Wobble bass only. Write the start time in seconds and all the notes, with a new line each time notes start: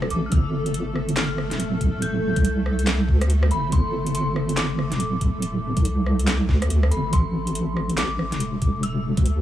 0.11 A1
0.32 G1
1.51 D1
2.36 C2
3.08 D2
3.51 G1
3.72 G1
4.92 D1
5.77 C2
6.49 D2
6.70 D2
6.92 G1
7.13 A1
8.32 E1
9.17 D2